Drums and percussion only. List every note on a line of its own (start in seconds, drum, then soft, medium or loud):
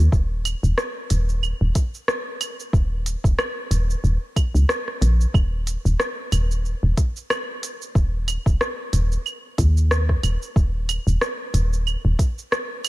0.12 kick loud
0.12 shaker soft
0.45 closed hi-hat medium
0.45 claves medium
0.45 shaker medium
0.64 shaker soft
0.78 cross-stick loud
0.78 shaker soft
1.10 closed hi-hat loud
1.10 shaker medium
1.29 shaker soft
1.43 claves medium
1.43 shaker soft
1.75 kick loud
1.75 closed hi-hat loud
1.75 shaker medium
1.94 shaker soft
2.08 cross-stick loud
2.08 shaker soft
2.41 closed hi-hat medium
2.41 claves medium
2.41 shaker medium
2.60 shaker soft
2.73 kick loud
2.73 shaker soft
3.06 closed hi-hat medium
3.06 shaker medium
3.24 kick loud
3.24 shaker soft
3.39 cross-stick loud
3.39 claves medium
3.39 shaker soft
3.71 closed hi-hat medium
3.71 shaker medium
3.90 shaker soft
4.04 shaker soft
4.36 kick loud
4.36 closed hi-hat medium
4.36 claves medium
4.36 shaker medium
4.56 shaker soft
4.69 cross-stick loud
4.69 shaker soft
4.88 cross-stick soft
5.02 closed hi-hat medium
5.02 shaker medium
5.21 shaker soft
5.34 kick loud
5.34 claves medium
5.34 shaker soft
5.67 closed hi-hat medium
5.67 shaker medium
5.86 shaker soft
6.00 cross-stick loud
6.00 shaker soft
6.32 closed hi-hat medium
6.32 claves medium
6.32 shaker medium
6.51 shaker soft
6.65 shaker soft
6.97 kick loud
6.97 closed hi-hat medium
6.97 shaker medium
7.16 shaker soft
7.30 cross-stick loud
7.30 claves medium
7.30 shaker soft
7.63 closed hi-hat medium
7.63 shaker medium
7.82 shaker soft
7.95 kick loud
7.95 shaker soft
8.28 closed hi-hat medium
8.28 claves medium
8.28 shaker medium
8.46 kick loud
8.46 shaker soft
8.61 cross-stick loud
8.61 shaker soft
8.93 closed hi-hat medium
8.93 shaker medium
9.12 shaker soft
9.26 claves medium
9.26 shaker soft
9.58 kick loud
9.58 closed hi-hat medium
9.58 shaker medium
9.77 shaker soft
9.91 cross-stick loud
9.91 shaker soft
10.09 kick medium
10.09 cross-stick soft
10.23 closed hi-hat medium
10.23 claves medium
10.23 shaker medium
10.42 shaker soft
10.56 kick loud
10.56 shaker soft
10.89 closed hi-hat medium
10.89 claves medium
10.89 shaker medium
11.08 shaker soft
11.21 cross-stick loud
11.21 shaker soft
11.54 closed hi-hat medium
11.54 shaker medium
11.73 shaker soft
11.87 claves medium
11.87 shaker soft
12.19 kick loud
12.19 closed hi-hat medium
12.19 shaker medium
12.38 shaker soft
12.52 cross-stick loud
12.52 shaker soft
12.85 closed hi-hat medium
12.85 claves medium
12.85 shaker medium